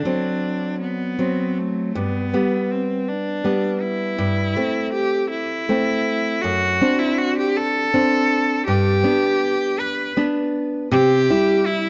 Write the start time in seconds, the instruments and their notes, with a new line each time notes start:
Already playing: cello D4
0.05 nylon-string guitar F#3 C4
0.81 cello B3
1.19 nylon-string guitar F#3 C4
1.59 cello A3
1.95 nylon-string guitar G2, cello B3
2.33 nylon-string guitar G3 B3
2.71 cello C4
3.08 cello D4
3.44 nylon-string guitar G3 B3
3.81 cello E4
4.18 nylon-string guitar G2
4.56 nylon-string guitar A3 C4
4.93 cello G4
5.30 cello E4
5.69 nylon-string guitar A3 C4
6.42 nylon-string guitar F#2, cello F#4
6.81 nylon-string guitar C4 D4
6.99 cello E4
7.18 cello F#4
7.38 cello G4
7.57 cello A4
7.94 nylon-string guitar C4 D4
8.66 nylon-string guitar G2, cello G4
9.04 nylon-string guitar B3 D4
9.79 cello B4
10.17 nylon-string guitar B3 D4
10.91 nylon-string guitar C3, cello G4
11.30 nylon-string guitar G3 E4
11.66 cello E4